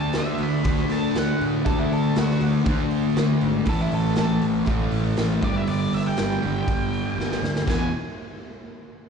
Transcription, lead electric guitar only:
Already playing: A5
0.18 E5
0.43 B5
0.92 A5
1.19 F#5
1.66 A4
1.79 E4
1.93 A4
2.19 F#4
3.69 A4
3.81 E4
3.95 A4
4.20 A4
5.44 D5
5.57 E5
5.68 D5
5.94 E5
6.06 G5
6.19 G5
7.70 G#5

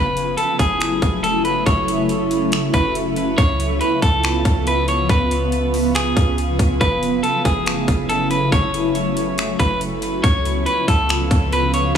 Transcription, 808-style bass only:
Already playing: F#1
0.59 F#1
1.02 F#1
1.66 F#1
2.74 F#1
3.38 C#2
4.02 C#2
4.45 C#2
5.09 C#2
6.17 C#2
6.59 C#2
6.81 F#1
7.45 F#1
7.88 F#1
8.52 F#1
9.60 F#1
10.24 C#2
10.88 C#2
11.31 C#2

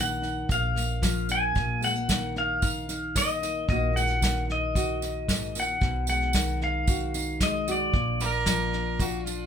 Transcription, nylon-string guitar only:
Already playing: D#3 A#3
0.22 D#4
0.49 A#2
0.75 A#3
1.02 F3
1.29 D4
1.55 A#2
1.81 G#3
1.96 A#3
2.08 D#3
2.36 D#4
2.62 D#4
2.89 D#4
3.16 A#3
3.42 D#4
3.68 A#2 D#3 A#3 D#4 F#4
3.93 G#3
4.07 A#3
4.21 D#3
4.50 D#4
4.76 F#4
5.02 D#4
5.29 G#2
5.55 A#2
5.81 B2
6.09 G#3
6.34 D#3
6.62 D#4
6.89 F#4
7.15 D#4
7.42 G#3
7.68 F#4
7.94 A#2
8.21 A#3
8.46 F3
8.74 D4
9.00 F4
9.27 D4

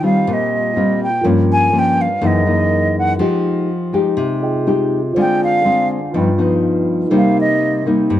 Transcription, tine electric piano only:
Already playing: F4 C5 D#5 G5
1.21 F4 A#4
1.25 C#5 G5
2.21 G#4 A#4 D#5 F#5
3.18 F4 D#5
3.24 G5
4.41 F4 G#4 D#5 G5
5.13 F4 C5 D5
5.18 G#5
6.12 F4 B4 D#5
6.17 G5
7.08 D#4 A#4
7.12 C5 G5

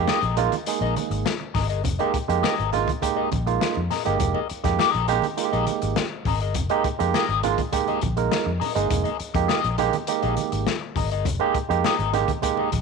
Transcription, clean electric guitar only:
0.08 G#4 A#4 D#5
0.53 muted clean electric guitar stroke
0.67 muted clean electric guitar stroke
0.82 G#4 A#4 D#5
0.96 muted clean electric guitar stroke
1.11 muted clean electric guitar stroke
1.25 muted clean electric guitar stroke
1.40 muted clean electric guitar stroke
1.54 G#4 A#4 D#5
1.69 G#4 A#4 D#5
1.99 G#4 A#4 D#5
2.14 muted clean electric guitar stroke
2.28 muted clean electric guitar stroke
2.43 G#4 A#4 D#5
2.87 muted clean electric guitar stroke
3.01 muted clean electric guitar stroke
3.16 G#4 A#4 D#5
3.31 muted clean electric guitar stroke
3.46 muted clean electric guitar stroke
3.60 muted clean electric guitar stroke
3.76 muted clean electric guitar stroke
3.90 G#4 A#4 D#5
4.05 G#4 A#4 D#5
4.34 G#4 A#4 D#5
4.49 muted clean electric guitar stroke
4.64 muted clean electric guitar stroke
4.79 G4 A4 D5
4.90 G#4 A#4 D#5
5.08 muted clean electric guitar stroke
5.23 muted clean electric guitar stroke
5.37 muted clean electric guitar stroke
5.52 G#4 A#4 D#5
5.82 muted clean electric guitar stroke
5.96 muted clean electric guitar stroke
6.12 muted clean electric guitar stroke
6.27 G#4 A#4 D#5
6.41 G#4 A#4 D#5
6.56 muted clean electric guitar stroke
6.70 G#4 A#4 D#5
6.85 muted clean electric guitar stroke
6.99 muted clean electric guitar stroke
7.14 G#4 A#4 D#5
7.58 muted clean electric guitar stroke
7.74 muted clean electric guitar stroke
7.88 G#4 A#4 D#5
8.03 muted clean electric guitar stroke
8.18 muted clean electric guitar stroke
8.32 muted clean electric guitar stroke
8.46 muted clean electric guitar stroke
8.60 G#4 A#4 D#5
8.75 G#4 A#4 D#5
8.89 muted clean electric guitar stroke
9.04 G#4 A#4 D#5
9.19 muted clean electric guitar stroke
9.34 muted clean electric guitar stroke
9.48 G#4 A#4 D#5
9.93 muted clean electric guitar stroke
10.08 muted clean electric guitar stroke
10.22 G#4 A#4 D#5
10.37 muted clean electric guitar stroke
10.52 muted clean electric guitar stroke
10.67 muted clean electric guitar stroke
10.81 muted clean electric guitar stroke
10.96 G#4 A#4 D#5
11.12 G#4 A#4 D#5
11.27 muted clean electric guitar stroke
11.42 G#4 A#4 D#5
11.56 muted clean electric guitar stroke
11.71 muted clean electric guitar stroke
11.86 G#4 A#4 D#5
12.30 muted clean electric guitar stroke
12.44 muted clean electric guitar stroke
12.58 G#4 A#4 D#5
12.72 muted clean electric guitar stroke

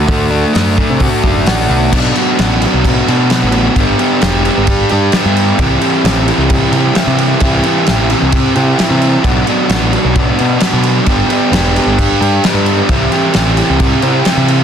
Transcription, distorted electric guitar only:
Already playing: D4 F#4
0.08 A3
0.31 D4
0.54 A3
0.77 A3
1.01 F#4
1.24 D4
1.48 F#4
1.71 A3
1.93 F#3 B3 D4 F#4
2.17 B3 D4 F#4
2.38 F#3 B3 D4 F#4
2.62 B3 D4 F#4
3.08 B3 D4 F#4
3.31 F#3 B3 D4 F#4
3.77 B3 D4 G4
3.99 D4 G4
4.22 B3 D4 G4
4.45 D4 G4
4.90 D4 G4
5.13 B3 D4 G4
5.59 E3 C4 E4 G4
5.81 C4 E4 G4
6.04 E3 C4 E4 G4
6.27 C4 E4 G4
6.73 C4 E4 G4
6.96 E3 C4 E4 G4
7.41 E3 C4 E4 G4
7.64 C4 E4 G4
7.87 E3 C4 E4 G4
8.10 C4 E4 G4
8.56 C4 E4 G4
8.79 E3 C4 E4 G4
9.24 F#3 B3 D4 F#4
9.47 B3 D4 F#4
9.70 F#3 B3 D4 F#4
9.93 B3 D4 F#4
10.39 B3 D4 F#4
10.62 F#3 B3 D4 F#4
11.07 B3 D4 G4
11.30 D4 G4
11.53 B3 D4 G4
11.76 D4 G4
12.21 D4 G4
12.44 B3 D4 G4
12.90 E3 C4 E4 G4
13.12 C4 E4 G4
13.34 E3 C4 E4 G4
13.58 C4 E4 G4
14.02 C4 E4 G4
14.26 E3 C4 E4 G4

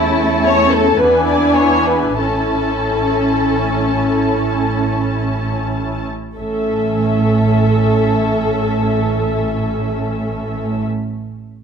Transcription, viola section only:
Already playing: A3 E4
1.00 D4 E4
2.20 C#4 E4
6.38 C#4 A4

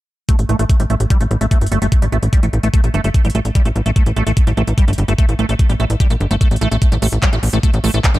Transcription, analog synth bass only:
0.39 A1
0.49 A1
0.59 A1
0.80 A1
0.90 A1
1.00 A1
1.21 A1
1.31 A1
1.41 A1
1.61 G1
1.72 G1
1.82 G1
2.02 A1
2.12 A1
2.23 A1
2.43 A1
2.53 A1
2.63 A1
2.84 A#1
2.94 G1
3.04 G1
3.25 A1
3.35 A1
3.45 A1
3.65 A1
3.76 A1
3.86 A1
4.06 A1
4.16 A1
4.27 A1
4.47 A1
4.57 A1
4.67 A1
4.88 G1
4.98 G1
5.08 G1
5.29 A1
5.39 A1
5.49 A1
5.69 A1
5.80 A1
5.90 A1
6.10 A#1
6.20 G1
6.31 G1
6.51 A1
6.61 A1
6.72 A1
6.92 A1
7.02 A1
7.12 A1
7.33 A1
7.43 A1
7.53 A1
7.74 A1
7.84 A1
7.94 A1
8.14 G1

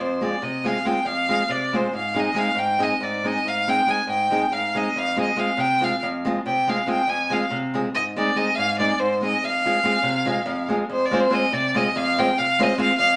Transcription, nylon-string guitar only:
Already playing: F2
0.21 G#3 C4 F4 G#4
0.42 C3
0.64 G#3 C4 F4 G#4
0.85 G#3 C4 F4 G#4
1.05 F2
1.29 G#3 C4 F4 G#4
1.49 C3
1.73 G#3 C4 F4 G#4
1.93 G#2
2.14 G#3 C4 D#4 G#4
2.34 G#3 C4 D#4 G#4
2.55 G#2
2.79 G#3 C4 D#4 G#4
3.00 G#2
3.24 G#3 C4 D#4 G#4
3.45 G#2
3.67 G#3 C4 D#4 G#4
3.87 G#3 C4 D#4 G#4
4.07 G#2
4.30 G#3 C4 D#4 G#4
4.52 G#2
4.74 G#3 C4 D#4 G#4
4.96 F2
5.16 G#3 C4 F4 G#4
5.36 G#3 C4 F4 G#4
5.57 C3
5.80 G#3 C4 F4 G#4
6.03 F2
6.25 G#3 C4 F4 G#4
6.46 C3
6.67 G#3 C4 F4 G#4
6.86 G#3 C4 F4 G#4
7.07 F2
7.30 G#3 C4 F4 G#4
7.50 C3
7.74 G#3 C4 F4 G#4
7.94 G#2
8.16 G#3 C4 D#4 G#4
8.36 G#3 C4 D#4 G#4
8.57 G#2
8.79 G#3 C4 D#4 G#4
9.00 G#2
9.21 G#3 C4 D#4 G#4
9.44 F2
9.65 G#3 C4 F4 G#4
9.83 G#3 C4 F4 G#4
10.03 C3
10.26 G#3 C4 F4 G#4
10.46 F2
10.68 G#3 C4 F4 G#4
10.90 F2
11.11 G#3 C4 F4 G#4 C5
11.30 G#3 C4 F4 G#4 C5
11.52 C3
11.74 G#3 C4 F4 G#4 C5
11.96 F2
12.18 G#3 C4 F4 G#4 C5
12.38 C3
12.59 G#3 C4 F4 G#4 C5
12.78 G#3 C4 F4 G#4 C5
12.99 F2

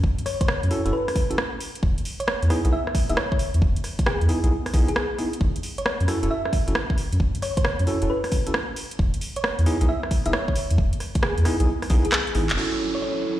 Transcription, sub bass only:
0.04 F#1
0.63 F#2
0.86 E1
1.83 E1
2.43 E2
2.65 B1
3.09 E1
3.54 E2
3.62 E1
4.21 E2
4.44 B1
4.74 B1
5.41 F#1
6.01 F#2
6.23 E1
6.68 F#1
7.12 F#2
7.20 F#1
7.79 F#2
8.02 E1
8.99 E1
9.59 E2
9.81 B1
10.26 E1
10.71 E2
10.78 E1
11.38 E2
11.60 B1
11.90 B1
12.35 G#1
12.49 E1

